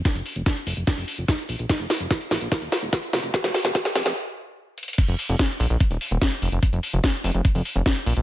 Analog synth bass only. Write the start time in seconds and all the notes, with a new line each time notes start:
0.15 F1
0.36 F1
0.67 F1
0.77 F1
0.98 F1
1.18 F1
1.49 A#1
1.59 A#1
1.80 F1
2.00 F1
2.31 A#1
2.41 A#1
2.62 D#1
2.82 D#1
3.13 F1
3.24 F1
3.44 F1
3.65 F1
3.95 F1
4.06 F1
5.08 F1
5.29 F1
5.60 A#1
5.70 A#1
5.91 D#1
6.11 D#1
6.42 F1
6.52 F1
6.73 F1
6.93 F1
7.24 F1
7.35 F1
7.55 F1
7.76 F1
8.06 A#1
8.17 A#1